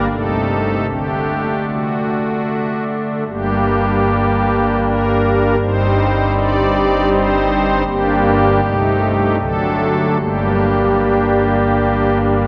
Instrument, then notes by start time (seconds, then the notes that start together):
pipe organ
0.11 C2 C3 A3 D#4 A4
0.89 D3 A3 D4 G4
1.68 F#4
3.27 G1 G2 G3 A#3 D4 G4
4.84 A#4
5.61 G1 G2 G3 C4 D#4 C5
6.36 D5
7.12 C5
7.86 G1 G2 G3 A#3 D4 G4
8.63 C2 C3 A3 D#4
9.39 D3 F#3 A3 D4 A4
10.19 G1 G2 G3 A#3 D4 G4